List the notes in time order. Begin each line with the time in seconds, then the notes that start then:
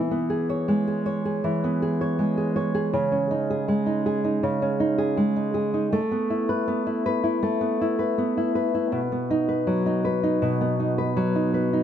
Already playing: E3 B3 B4
0.11 B3
0.30 G#4
0.49 C#5
0.68 G#3
0.87 G#4
1.06 C#5
1.25 G#4
1.44 E3
1.64 B3
1.82 G#4
2.01 C#5
2.19 G#3
2.37 G#4
2.56 C#5
2.75 G#4
2.93 C#3
3.12 C#4
3.31 D#4
3.50 G#4
3.68 G#3
3.86 D#4
4.06 G#4
4.24 D#4
4.43 C#3
4.62 C#4
4.80 D#4
4.98 G#4
5.17 G#3
5.36 D#4
5.54 G#4
5.74 D#4
5.92 A3
6.11 B3
6.30 E4
6.49 B4
6.68 B3
6.87 E4
7.06 B4
7.24 E4
7.43 A3
7.61 B3
7.81 E4
7.99 B4
8.18 B3
8.37 E4
8.55 B4
8.75 E4
8.92 B2
9.12 B3
9.30 D#4
9.48 B4
9.67 F#3
9.86 D#4
10.05 B4
10.23 D#4
10.42 B2
10.61 B3
10.80 D#4
10.98 B4
11.16 F#3
11.35 D#4
11.54 B4
11.73 D#4